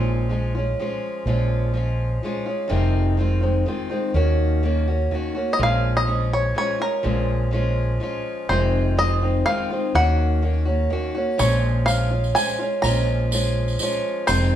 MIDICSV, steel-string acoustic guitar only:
0, 0, Header, 1, 2, 480
1, 0, Start_track
1, 0, Key_signature, -5, "minor"
1, 0, Tempo, 482315
1, 1248, Time_signature, 3, 2, 24, 8
1, 14485, End_track
2, 0, Start_track
2, 0, Title_t, "Steel-string acoustic guitar"
2, 0, Program_c, 0, 25
2, 0, Note_on_c, 0, 46, 68
2, 0, Note_on_c, 0, 53, 63
2, 0, Note_on_c, 0, 56, 73
2, 0, Note_on_c, 0, 61, 68
2, 0, Note_on_c, 0, 65, 75
2, 288, Note_off_c, 0, 53, 0
2, 290, Note_off_c, 0, 46, 0
2, 292, Note_on_c, 0, 53, 51
2, 299, Note_off_c, 0, 61, 0
2, 302, Note_off_c, 0, 56, 0
2, 306, Note_on_c, 0, 56, 54
2, 312, Note_on_c, 0, 61, 55
2, 315, Note_off_c, 0, 65, 0
2, 319, Note_on_c, 0, 65, 59
2, 530, Note_off_c, 0, 53, 0
2, 532, Note_off_c, 0, 65, 0
2, 537, Note_off_c, 0, 56, 0
2, 540, Note_off_c, 0, 61, 0
2, 544, Note_on_c, 0, 65, 41
2, 567, Note_on_c, 0, 61, 39
2, 582, Note_on_c, 0, 56, 33
2, 775, Note_off_c, 0, 65, 0
2, 785, Note_off_c, 0, 56, 0
2, 787, Note_off_c, 0, 61, 0
2, 792, Note_on_c, 0, 53, 57
2, 797, Note_on_c, 0, 56, 57
2, 810, Note_on_c, 0, 61, 57
2, 814, Note_on_c, 0, 65, 61
2, 1257, Note_off_c, 0, 53, 0
2, 1261, Note_on_c, 0, 53, 76
2, 1263, Note_on_c, 0, 46, 63
2, 1266, Note_off_c, 0, 61, 0
2, 1267, Note_off_c, 0, 56, 0
2, 1271, Note_on_c, 0, 56, 72
2, 1277, Note_off_c, 0, 65, 0
2, 1278, Note_on_c, 0, 61, 73
2, 1281, Note_on_c, 0, 65, 67
2, 1723, Note_off_c, 0, 53, 0
2, 1727, Note_on_c, 0, 53, 55
2, 1734, Note_off_c, 0, 56, 0
2, 1734, Note_off_c, 0, 61, 0
2, 1735, Note_off_c, 0, 46, 0
2, 1738, Note_on_c, 0, 56, 50
2, 1746, Note_on_c, 0, 61, 57
2, 1758, Note_off_c, 0, 65, 0
2, 1762, Note_on_c, 0, 65, 67
2, 2208, Note_off_c, 0, 53, 0
2, 2213, Note_off_c, 0, 56, 0
2, 2217, Note_off_c, 0, 61, 0
2, 2219, Note_on_c, 0, 53, 54
2, 2225, Note_off_c, 0, 65, 0
2, 2232, Note_on_c, 0, 56, 59
2, 2242, Note_on_c, 0, 61, 58
2, 2244, Note_on_c, 0, 65, 61
2, 2434, Note_off_c, 0, 65, 0
2, 2446, Note_on_c, 0, 65, 52
2, 2450, Note_off_c, 0, 61, 0
2, 2454, Note_off_c, 0, 53, 0
2, 2460, Note_off_c, 0, 56, 0
2, 2462, Note_on_c, 0, 61, 42
2, 2477, Note_on_c, 0, 56, 40
2, 2664, Note_on_c, 0, 41, 72
2, 2670, Note_off_c, 0, 56, 0
2, 2673, Note_off_c, 0, 65, 0
2, 2677, Note_on_c, 0, 48, 70
2, 2681, Note_on_c, 0, 56, 72
2, 2682, Note_on_c, 0, 51, 80
2, 2683, Note_off_c, 0, 61, 0
2, 2685, Note_on_c, 0, 65, 86
2, 2687, Note_on_c, 0, 60, 77
2, 3145, Note_off_c, 0, 51, 0
2, 3157, Note_off_c, 0, 41, 0
2, 3157, Note_on_c, 0, 51, 51
2, 3158, Note_off_c, 0, 56, 0
2, 3163, Note_off_c, 0, 48, 0
2, 3166, Note_off_c, 0, 60, 0
2, 3167, Note_off_c, 0, 65, 0
2, 3170, Note_on_c, 0, 56, 59
2, 3178, Note_on_c, 0, 60, 57
2, 3188, Note_on_c, 0, 65, 60
2, 3374, Note_off_c, 0, 65, 0
2, 3386, Note_on_c, 0, 65, 47
2, 3389, Note_off_c, 0, 60, 0
2, 3401, Note_off_c, 0, 56, 0
2, 3401, Note_on_c, 0, 60, 43
2, 3403, Note_off_c, 0, 51, 0
2, 3413, Note_on_c, 0, 56, 41
2, 3418, Note_on_c, 0, 51, 40
2, 3629, Note_off_c, 0, 51, 0
2, 3635, Note_off_c, 0, 56, 0
2, 3638, Note_off_c, 0, 65, 0
2, 3641, Note_on_c, 0, 51, 52
2, 3646, Note_off_c, 0, 60, 0
2, 3647, Note_on_c, 0, 56, 53
2, 3661, Note_on_c, 0, 60, 56
2, 3664, Note_on_c, 0, 65, 66
2, 3865, Note_off_c, 0, 65, 0
2, 3875, Note_off_c, 0, 60, 0
2, 3877, Note_on_c, 0, 65, 45
2, 3886, Note_off_c, 0, 51, 0
2, 3887, Note_on_c, 0, 60, 45
2, 3889, Note_off_c, 0, 56, 0
2, 3901, Note_on_c, 0, 56, 45
2, 3909, Note_on_c, 0, 51, 35
2, 4110, Note_off_c, 0, 51, 0
2, 4122, Note_off_c, 0, 56, 0
2, 4122, Note_on_c, 0, 51, 69
2, 4124, Note_off_c, 0, 65, 0
2, 4126, Note_on_c, 0, 58, 72
2, 4128, Note_off_c, 0, 60, 0
2, 4132, Note_on_c, 0, 61, 78
2, 4142, Note_on_c, 0, 66, 79
2, 4594, Note_off_c, 0, 51, 0
2, 4600, Note_off_c, 0, 58, 0
2, 4606, Note_on_c, 0, 51, 59
2, 4612, Note_off_c, 0, 61, 0
2, 4612, Note_on_c, 0, 58, 58
2, 4617, Note_off_c, 0, 66, 0
2, 4624, Note_on_c, 0, 61, 58
2, 4631, Note_on_c, 0, 66, 58
2, 4839, Note_off_c, 0, 66, 0
2, 4849, Note_off_c, 0, 51, 0
2, 4851, Note_on_c, 0, 66, 43
2, 4852, Note_off_c, 0, 58, 0
2, 4858, Note_off_c, 0, 61, 0
2, 4868, Note_on_c, 0, 61, 39
2, 4887, Note_on_c, 0, 58, 38
2, 5085, Note_off_c, 0, 58, 0
2, 5087, Note_on_c, 0, 51, 60
2, 5091, Note_off_c, 0, 66, 0
2, 5097, Note_on_c, 0, 58, 58
2, 5100, Note_off_c, 0, 61, 0
2, 5113, Note_on_c, 0, 61, 59
2, 5123, Note_on_c, 0, 66, 57
2, 5308, Note_off_c, 0, 66, 0
2, 5320, Note_on_c, 0, 66, 43
2, 5322, Note_off_c, 0, 61, 0
2, 5330, Note_off_c, 0, 51, 0
2, 5333, Note_on_c, 0, 61, 40
2, 5334, Note_off_c, 0, 58, 0
2, 5351, Note_on_c, 0, 58, 37
2, 5546, Note_on_c, 0, 46, 64
2, 5555, Note_off_c, 0, 61, 0
2, 5558, Note_on_c, 0, 53, 62
2, 5560, Note_off_c, 0, 58, 0
2, 5564, Note_on_c, 0, 56, 68
2, 5566, Note_off_c, 0, 66, 0
2, 5567, Note_on_c, 0, 61, 65
2, 5570, Note_on_c, 0, 65, 75
2, 6026, Note_off_c, 0, 53, 0
2, 6030, Note_on_c, 0, 53, 48
2, 6040, Note_off_c, 0, 46, 0
2, 6041, Note_off_c, 0, 56, 0
2, 6043, Note_off_c, 0, 61, 0
2, 6045, Note_on_c, 0, 56, 50
2, 6055, Note_on_c, 0, 61, 55
2, 6059, Note_off_c, 0, 65, 0
2, 6063, Note_on_c, 0, 65, 50
2, 6511, Note_off_c, 0, 53, 0
2, 6515, Note_on_c, 0, 53, 54
2, 6526, Note_off_c, 0, 56, 0
2, 6530, Note_on_c, 0, 56, 55
2, 6531, Note_off_c, 0, 61, 0
2, 6543, Note_on_c, 0, 61, 62
2, 6548, Note_off_c, 0, 65, 0
2, 6552, Note_on_c, 0, 65, 54
2, 6751, Note_off_c, 0, 65, 0
2, 6762, Note_off_c, 0, 61, 0
2, 6762, Note_on_c, 0, 65, 42
2, 6764, Note_off_c, 0, 53, 0
2, 6772, Note_off_c, 0, 56, 0
2, 6774, Note_on_c, 0, 61, 38
2, 6788, Note_on_c, 0, 56, 39
2, 6993, Note_off_c, 0, 61, 0
2, 6995, Note_on_c, 0, 46, 62
2, 6996, Note_off_c, 0, 65, 0
2, 6997, Note_on_c, 0, 53, 65
2, 6998, Note_off_c, 0, 56, 0
2, 7005, Note_on_c, 0, 61, 62
2, 7008, Note_on_c, 0, 65, 72
2, 7010, Note_on_c, 0, 56, 67
2, 7471, Note_off_c, 0, 53, 0
2, 7475, Note_on_c, 0, 53, 58
2, 7485, Note_off_c, 0, 46, 0
2, 7485, Note_off_c, 0, 56, 0
2, 7485, Note_off_c, 0, 61, 0
2, 7489, Note_on_c, 0, 56, 65
2, 7497, Note_on_c, 0, 61, 59
2, 7504, Note_off_c, 0, 65, 0
2, 7508, Note_on_c, 0, 65, 65
2, 7949, Note_off_c, 0, 53, 0
2, 7960, Note_off_c, 0, 56, 0
2, 7961, Note_on_c, 0, 53, 52
2, 7972, Note_on_c, 0, 56, 65
2, 7976, Note_off_c, 0, 61, 0
2, 7981, Note_off_c, 0, 65, 0
2, 7987, Note_on_c, 0, 61, 61
2, 7995, Note_on_c, 0, 65, 65
2, 8448, Note_off_c, 0, 53, 0
2, 8449, Note_off_c, 0, 56, 0
2, 8450, Note_on_c, 0, 41, 64
2, 8454, Note_on_c, 0, 48, 67
2, 8460, Note_off_c, 0, 65, 0
2, 8461, Note_off_c, 0, 61, 0
2, 8461, Note_on_c, 0, 51, 61
2, 8461, Note_on_c, 0, 56, 78
2, 8465, Note_on_c, 0, 60, 67
2, 8472, Note_on_c, 0, 65, 77
2, 8916, Note_off_c, 0, 51, 0
2, 8927, Note_off_c, 0, 56, 0
2, 8928, Note_on_c, 0, 51, 49
2, 8933, Note_off_c, 0, 41, 0
2, 8934, Note_off_c, 0, 48, 0
2, 8939, Note_on_c, 0, 56, 56
2, 8940, Note_off_c, 0, 60, 0
2, 8943, Note_off_c, 0, 65, 0
2, 8951, Note_on_c, 0, 60, 56
2, 8959, Note_on_c, 0, 65, 55
2, 9158, Note_off_c, 0, 65, 0
2, 9166, Note_off_c, 0, 60, 0
2, 9170, Note_on_c, 0, 65, 43
2, 9171, Note_off_c, 0, 51, 0
2, 9177, Note_off_c, 0, 56, 0
2, 9178, Note_on_c, 0, 60, 40
2, 9196, Note_on_c, 0, 56, 42
2, 9200, Note_on_c, 0, 51, 39
2, 9400, Note_off_c, 0, 51, 0
2, 9407, Note_off_c, 0, 56, 0
2, 9412, Note_off_c, 0, 60, 0
2, 9412, Note_off_c, 0, 65, 0
2, 9412, Note_on_c, 0, 51, 54
2, 9419, Note_on_c, 0, 56, 64
2, 9424, Note_on_c, 0, 60, 67
2, 9433, Note_on_c, 0, 65, 63
2, 9644, Note_off_c, 0, 65, 0
2, 9653, Note_off_c, 0, 51, 0
2, 9656, Note_on_c, 0, 65, 49
2, 9657, Note_off_c, 0, 56, 0
2, 9659, Note_off_c, 0, 60, 0
2, 9670, Note_on_c, 0, 60, 45
2, 9675, Note_on_c, 0, 56, 37
2, 9685, Note_on_c, 0, 51, 37
2, 9888, Note_off_c, 0, 51, 0
2, 9895, Note_off_c, 0, 65, 0
2, 9897, Note_off_c, 0, 56, 0
2, 9900, Note_on_c, 0, 51, 69
2, 9901, Note_on_c, 0, 58, 76
2, 9902, Note_off_c, 0, 60, 0
2, 9908, Note_on_c, 0, 61, 72
2, 9926, Note_on_c, 0, 66, 70
2, 10362, Note_off_c, 0, 51, 0
2, 10374, Note_on_c, 0, 51, 52
2, 10377, Note_off_c, 0, 58, 0
2, 10381, Note_on_c, 0, 58, 52
2, 10387, Note_off_c, 0, 66, 0
2, 10389, Note_off_c, 0, 61, 0
2, 10393, Note_on_c, 0, 61, 53
2, 10399, Note_on_c, 0, 66, 53
2, 10590, Note_off_c, 0, 66, 0
2, 10602, Note_on_c, 0, 66, 45
2, 10608, Note_off_c, 0, 61, 0
2, 10614, Note_off_c, 0, 51, 0
2, 10618, Note_off_c, 0, 58, 0
2, 10620, Note_on_c, 0, 61, 44
2, 10641, Note_on_c, 0, 58, 37
2, 10841, Note_off_c, 0, 58, 0
2, 10848, Note_off_c, 0, 66, 0
2, 10848, Note_on_c, 0, 51, 53
2, 10853, Note_on_c, 0, 58, 63
2, 10857, Note_off_c, 0, 61, 0
2, 10872, Note_on_c, 0, 61, 61
2, 10874, Note_on_c, 0, 66, 66
2, 11080, Note_off_c, 0, 66, 0
2, 11092, Note_off_c, 0, 51, 0
2, 11092, Note_on_c, 0, 66, 50
2, 11094, Note_off_c, 0, 58, 0
2, 11104, Note_off_c, 0, 61, 0
2, 11116, Note_on_c, 0, 61, 44
2, 11127, Note_on_c, 0, 58, 39
2, 11322, Note_on_c, 0, 46, 65
2, 11328, Note_on_c, 0, 53, 71
2, 11330, Note_off_c, 0, 58, 0
2, 11330, Note_off_c, 0, 61, 0
2, 11334, Note_off_c, 0, 66, 0
2, 11334, Note_on_c, 0, 56, 73
2, 11340, Note_on_c, 0, 65, 69
2, 11342, Note_on_c, 0, 61, 70
2, 11794, Note_off_c, 0, 53, 0
2, 11798, Note_on_c, 0, 53, 56
2, 11801, Note_off_c, 0, 56, 0
2, 11805, Note_off_c, 0, 61, 0
2, 11805, Note_on_c, 0, 56, 50
2, 11808, Note_off_c, 0, 46, 0
2, 11817, Note_on_c, 0, 61, 55
2, 11828, Note_off_c, 0, 65, 0
2, 11832, Note_on_c, 0, 65, 63
2, 12033, Note_off_c, 0, 65, 0
2, 12045, Note_off_c, 0, 61, 0
2, 12045, Note_on_c, 0, 65, 44
2, 12046, Note_off_c, 0, 53, 0
2, 12050, Note_off_c, 0, 56, 0
2, 12057, Note_on_c, 0, 61, 41
2, 12073, Note_on_c, 0, 56, 32
2, 12290, Note_off_c, 0, 65, 0
2, 12294, Note_on_c, 0, 53, 62
2, 12295, Note_off_c, 0, 56, 0
2, 12296, Note_off_c, 0, 61, 0
2, 12307, Note_on_c, 0, 56, 55
2, 12314, Note_on_c, 0, 61, 54
2, 12323, Note_on_c, 0, 65, 54
2, 12515, Note_off_c, 0, 65, 0
2, 12527, Note_on_c, 0, 65, 47
2, 12534, Note_off_c, 0, 53, 0
2, 12538, Note_off_c, 0, 61, 0
2, 12541, Note_off_c, 0, 56, 0
2, 12550, Note_on_c, 0, 61, 42
2, 12567, Note_on_c, 0, 56, 38
2, 12766, Note_on_c, 0, 46, 68
2, 12768, Note_off_c, 0, 56, 0
2, 12771, Note_off_c, 0, 65, 0
2, 12772, Note_on_c, 0, 53, 66
2, 12776, Note_off_c, 0, 61, 0
2, 12780, Note_on_c, 0, 56, 77
2, 12788, Note_on_c, 0, 61, 78
2, 12794, Note_on_c, 0, 65, 68
2, 13241, Note_off_c, 0, 53, 0
2, 13245, Note_on_c, 0, 53, 56
2, 13250, Note_off_c, 0, 46, 0
2, 13257, Note_off_c, 0, 56, 0
2, 13258, Note_off_c, 0, 61, 0
2, 13261, Note_on_c, 0, 56, 53
2, 13270, Note_on_c, 0, 61, 61
2, 13278, Note_off_c, 0, 65, 0
2, 13282, Note_on_c, 0, 65, 53
2, 13717, Note_off_c, 0, 53, 0
2, 13726, Note_off_c, 0, 56, 0
2, 13729, Note_on_c, 0, 53, 59
2, 13738, Note_on_c, 0, 56, 59
2, 13742, Note_off_c, 0, 61, 0
2, 13748, Note_off_c, 0, 65, 0
2, 13756, Note_on_c, 0, 61, 70
2, 13763, Note_on_c, 0, 65, 66
2, 14205, Note_on_c, 0, 41, 68
2, 14211, Note_off_c, 0, 53, 0
2, 14212, Note_off_c, 0, 56, 0
2, 14213, Note_off_c, 0, 65, 0
2, 14214, Note_on_c, 0, 48, 68
2, 14218, Note_off_c, 0, 61, 0
2, 14221, Note_on_c, 0, 51, 63
2, 14222, Note_on_c, 0, 60, 72
2, 14224, Note_on_c, 0, 56, 79
2, 14225, Note_on_c, 0, 65, 73
2, 14485, Note_off_c, 0, 41, 0
2, 14485, Note_off_c, 0, 48, 0
2, 14485, Note_off_c, 0, 51, 0
2, 14485, Note_off_c, 0, 56, 0
2, 14485, Note_off_c, 0, 60, 0
2, 14485, Note_off_c, 0, 65, 0
2, 14485, End_track
0, 0, End_of_file